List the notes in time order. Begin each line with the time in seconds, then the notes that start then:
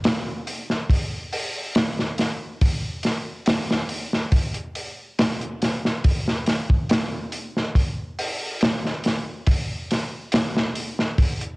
0.04 snare, open hi-hat
0.47 open hi-hat
0.70 snare
0.90 kick, open hi-hat
1.33 open hi-hat
1.75 snare, open hi-hat
1.99 snare
2.18 snare, open hi-hat
2.61 kick, open hi-hat
3.03 snare, open hi-hat
3.46 snare, open hi-hat
3.71 snare
3.89 open hi-hat
4.13 snare
4.32 kick, open hi-hat
4.54 closed hi-hat
4.75 open hi-hat
5.18 snare, open hi-hat
5.41 closed hi-hat
5.61 snare, open hi-hat
5.85 snare
6.04 kick, open hi-hat
6.28 snare
6.47 snare, open hi-hat
6.70 kick
6.90 snare, open hi-hat
7.32 open hi-hat
7.56 snare
7.75 kick, open hi-hat
8.19 open hi-hat
8.61 snare, open hi-hat
8.85 snare
9.04 snare, open hi-hat
9.46 kick, open hi-hat
9.91 snare, open hi-hat
10.32 snare, open hi-hat
10.57 snare
10.76 open hi-hat
10.99 snare
11.19 kick, open hi-hat
11.41 closed hi-hat